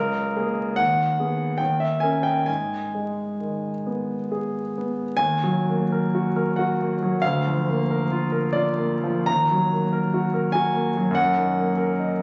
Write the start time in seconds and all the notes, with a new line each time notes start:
Already playing: C#2 A#4
0.36 A#3 G#4
0.76 D#2 F#5
1.20 B3 G#4
1.58 D#2 G5
1.80 E5
2.00 C#4 A#4 G#5
2.23 G5
2.46 G#2 G#5
2.95 G#3
3.40 D#3
3.86 B3
4.32 G#4
4.78 B3
5.17 D#2 G#5
5.44 F#3
5.69 A#3
5.92 A#4
6.15 F#4
6.36 A#4
6.56 F#4 F#5
6.80 A#3
7.02 F#3
7.22 D2 F5
7.47 F3
7.69 A#3
7.91 A#4
8.12 F4
8.32 A#4
8.53 F4 D5
8.78 A#3
9.04 F3
9.26 D#2 A#5
9.51 F#3
9.72 A#3
9.93 A#4
10.14 F#4
10.34 A#4
10.52 F#4 G#5
10.75 A#3
10.97 F#3
11.11 F#2
11.15 F#5
11.37 D#3
11.59 A#3
11.78 A#4
11.99 D#4